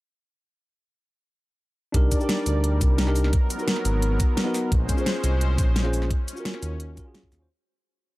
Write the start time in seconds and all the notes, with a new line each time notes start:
1.92 C2 G3 D4 D#4 G4 A#4 D5, kick, closed hi-hat
2.12 kick, closed hi-hat, shaker
2.17 D4 D#4, shaker
2.22 G4 A#4
2.29 snare, closed hi-hat
2.46 D2, closed hi-hat, shaker
2.64 closed hi-hat
2.81 C2, kick, closed hi-hat, shaker
2.98 snare, closed hi-hat
3.05 D4 D#4 G4 A#4, snare
3.16 open hi-hat, shaker
3.24 snare
3.33 F#3 B3, kick, closed hi-hat
3.50 closed hi-hat, shaker
3.56 B3 D#4, shaker
3.60 F#4 A#4
3.68 snare, closed hi-hat
3.76 snare
3.85 G#1, closed hi-hat, shaker
4.02 closed hi-hat
4.20 kick, closed hi-hat, shaker
4.37 snare, closed hi-hat
4.44 B3 D#4 F#4 A#4
4.54 snare, open hi-hat, shaker
4.71 A#1 G#3 C#4 C5, kick, closed hi-hat
4.89 kick, closed hi-hat, shaker
4.94 C#4 F4, shaker
4.99 G#4 C5
5.06 snare, closed hi-hat
5.24 C2, closed hi-hat, shaker
5.41 closed hi-hat
5.58 A#1, kick, closed hi-hat, shaker
5.76 snare, closed hi-hat
5.83 C#4 F4 G#4 C5, snare
5.93 open hi-hat, shaker
6.02 snare
6.10 C#4, kick, closed hi-hat
6.28 closed hi-hat, shaker
6.33 C#4 F4, shaker
6.38 F#4 A#4
6.45 snare, closed hi-hat
6.54 snare
6.63 D#2, closed hi-hat, shaker
6.80 closed hi-hat
6.96 C#4 F4 F#4 A#4, kick, closed hi-hat, shaker
7.05 C#4 F4 F#4 G#4
7.15 snare, closed hi-hat
7.23 kick
7.32 D#2, snare, open hi-hat, shaker
7.39 C#4 F4 F#4 C5